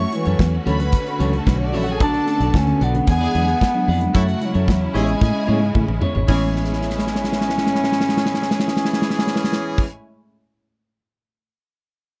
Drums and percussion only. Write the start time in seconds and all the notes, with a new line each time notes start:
0.12 closed hi-hat
0.26 closed hi-hat
0.39 kick, snare
0.67 closed hi-hat
0.80 closed hi-hat
0.92 kick, closed hi-hat
1.07 closed hi-hat
1.20 closed hi-hat
1.33 closed hi-hat
1.47 kick, snare
1.74 snare, open hi-hat
1.87 closed hi-hat
2.00 kick, closed hi-hat
2.14 closed hi-hat
2.28 closed hi-hat
2.40 closed hi-hat
2.54 kick, snare
2.67 closed hi-hat
2.81 closed hi-hat
2.95 closed hi-hat
3.07 kick, closed hi-hat
3.22 closed hi-hat
3.35 closed hi-hat
3.48 closed hi-hat
3.61 kick, snare
3.89 open hi-hat
4.01 closed hi-hat
4.15 kick, closed hi-hat
4.29 closed hi-hat
4.42 closed hi-hat
4.54 closed hi-hat
4.68 kick, snare
4.95 closed hi-hat
5.09 closed hi-hat
5.21 kick, snare
5.48 high tom
5.75 kick, mid tom
5.88 mid tom
6.02 floor tom
6.15 floor tom
6.28 kick, crash
6.56 snare
6.65 snare
6.73 snare
6.82 snare
6.90 snare
6.99 snare
7.07 snare
7.15 snare
7.24 snare
7.32 snare
7.41 snare
7.49 snare
7.58 snare
7.66 snare
7.75 snare
7.84 snare
7.92 snare
8.01 snare
8.09 snare
8.17 snare
8.26 snare
8.34 snare
8.42 snare
8.51 snare
8.60 snare
8.68 snare
8.77 snare
8.85 snare
8.93 snare
9.02 snare
9.10 snare
9.19 snare
9.27 snare
9.36 snare
9.44 snare
9.53 snare
9.78 kick, crash